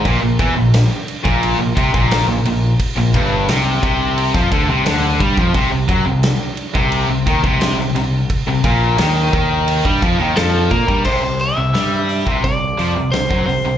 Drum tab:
CC |x-x-x-x-x-x-x-x-|x-x-x-x-x-x-x-x-|x-x-x-x-x-x-x-x-|x-x-x-x-x-x-x-x-|
HH |----------------|----------------|----------------|----------------|
SD |----o-------o---|----o----o--o---|----o-------o---|----o-------o---|
BD |o-o----o--oo----|o-o---o--oo---oo|o-o----o--oo----|o-o---o--oo---oo|

CC |x---------------|
HH |--o-o-o-o-o-o-o-|
SD |----o-------o---|
BD |o------oo----o--|